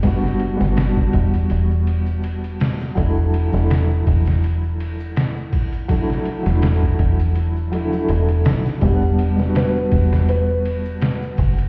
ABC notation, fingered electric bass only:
X:1
M:4/4
L:1/16
Q:"Swing 16ths" 1/4=82
K:Em
V:1 name="Fingered electric bass" clef=bass
F,,,3 G,,,3 E,,,2 E,,,8 | E,,,3 E,,,3 E,,,8 z2 | z3 E,,,3 E,,,6 E,,,2 B,,,2 | E,,,6 E,,,8 F,,,2 |]